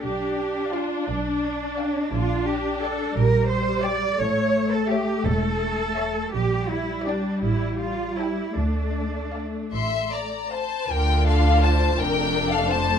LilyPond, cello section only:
\new Staff \with { instrumentName = "Cello section" } { \time 6/8 \key c \dorian \tempo 4. = 56 g'4 f'8 d'4. | \key d \minor f'8 g'8 a'8 bes'8 c''8 d''8 | cis''8. a'16 g'8 a'4. | g'8 e'8 d'8 e'8 f'8 e'8 |
d'4. r4. | d4. f,4. | }